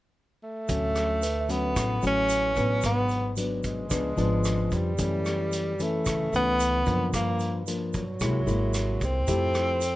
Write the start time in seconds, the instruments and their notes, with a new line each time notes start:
0.43 tenor saxophone A3
0.68 upright bass D2, nylon-string guitar D3 F#3 A3 C#4, kick, closed hi-hat, shaker
0.95 cross-stick, closed hi-hat, shaker
1.22 tine electric piano B4, closed hi-hat, shaker
1.41 tine electric piano E5
1.49 nylon-string guitar F#3 A3 C#4, tenor saxophone B3, closed hi-hat, shaker
1.76 upright bass A1, nylon-string guitar A2, kick, cross-stick, closed hi-hat, shaker
2.02 upright bass A1, nylon-string guitar F#3 A3 C#4, closed hi-hat, shaker
2.07 tenor saxophone C#4
2.29 closed hi-hat, shaker
2.56 upright bass A1, nylon-string guitar F#3 B3 D4, kick, closed hi-hat, shaker
2.82 upright bass G#1, nylon-string guitar G#2, kick, cross-stick, closed hi-hat, shaker
2.86 tenor saxophone B3
3.09 closed hi-hat, shaker
3.36 nylon-string guitar F#3 B3 D4, closed hi-hat, shaker
3.63 tenor saxophone G#3, kick, closed hi-hat, shaker
3.89 upright bass C#2, nylon-string guitar C#3 F3 B3 D4, kick, cross-stick, closed hi-hat, shaker
4.17 upright bass G#1, nylon-string guitar F3 B3 D4, closed hi-hat, shaker
4.44 cross-stick, closed hi-hat, shaker
4.71 upright bass F2, tenor saxophone G3, kick, closed hi-hat, shaker
4.98 upright bass F#2, nylon-string guitar E3 A3 C#4, kick, closed hi-hat, shaker
5.25 cross-stick, closed hi-hat, shaker
5.52 closed hi-hat, shaker
5.79 nylon-string guitar E3 A3 C#4, tenor saxophone A3, closed hi-hat, shaker
6.05 upright bass C#2, nylon-string guitar C#3, kick, cross-stick, closed hi-hat, shaker
6.32 upright bass C#2, nylon-string guitar E3 A3 C#4, tenor saxophone B3, closed hi-hat, shaker
6.60 closed hi-hat, shaker
6.86 upright bass F#2, nylon-string guitar F3 A#3 D4, kick, closed hi-hat, shaker
7.13 nylon-string guitar G2, upright bass G2, tenor saxophone A#3, kick, cross-stick, closed hi-hat, shaker
7.39 closed hi-hat, shaker
7.67 nylon-string guitar F3 A#3 D4, closed hi-hat, shaker
7.93 tenor saxophone F#3, kick, closed hi-hat, shaker
8.20 upright bass C2, nylon-string guitar C3 G#3 A#3 E4, kick, cross-stick, closed hi-hat, shaker
8.46 upright bass G#1, nylon-string guitar G#3 A#3 E4, closed hi-hat, shaker
8.74 cross-stick, closed hi-hat, shaker
9.01 upright bass C2, tenor saxophone C4, kick, closed hi-hat, shaker
9.27 upright bass F2, nylon-string guitar F3 A3 E4 G4, tine electric piano A4, kick, closed hi-hat, shaker
9.54 cross-stick, closed hi-hat, shaker
9.81 closed hi-hat, shaker